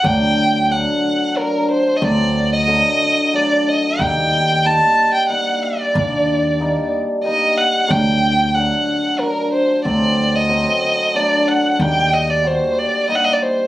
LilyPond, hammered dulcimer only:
\new Staff \with { instrumentName = "Hammered dulcimer" } { \time 3/4 \tempo 4 = 92 <fis a d'>8 r8 <fis a d'>8 r8 <fis d'>8 r8 | <fis a c'>8 r8 <d fis a>8 r8 <fis a d'>8 r8 | <g bes ees'>8 r8 <g bes ees'>8 r8 <g bes ees'>8 r8 | <g bes d'>8 r8 <g bes ees'>8 r8 <g bes ees'>8 r8 |
<fis a d'>8 r8 <fis a d'>8 r8 <fis d'>8 r8 | <fis a c'>8 r8 <fis a c'>8 r8 <fis a d'>8 r8 | <g bes ees'>8 r8 <g bes fis'>8 r8 <g bes ees'>8 r8 | }